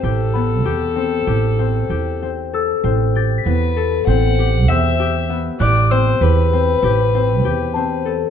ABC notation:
X:1
M:9/8
L:1/16
Q:3/8=65
K:Ador
V:1 name="Celesta"
c''2 b12 z2 e'2- | e'2 a' b'8- b' e'6 | f'2 e'12 a4 |]
V:2 name="Violin"
A12- A2 z4 | z4 B4 f4 e4 z2 | d2 c2 B12 z2 |]
V:3 name="Harp"
G2 B,2 G2 C2 G2 C2 G2 C2 A2 | C2 G2 B,2 A2 C2 G2 C2 G2 B,2 | G2 C2 G2 C2 G2 C2 G2 C2 A2 |]
V:4 name="Upright bass" clef=bass
A,,,4 E,,4 A,,,4 E,,6 | A,,,4 E,,4 A,,,4 E,,6 | A,,,4 E,,4 A,,,4 E,,6 |]